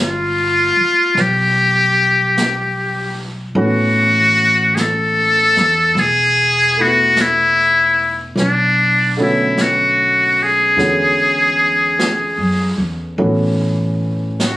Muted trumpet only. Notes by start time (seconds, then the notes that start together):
0.00 F4
1.20 G4
3.59 F#4
4.75 G#4
4.80 A4
5.99 G#4
6.81 F#4
7.21 E4
8.39 D4
9.23 E4
9.61 F#4
10.43 G#4
14.46 F#4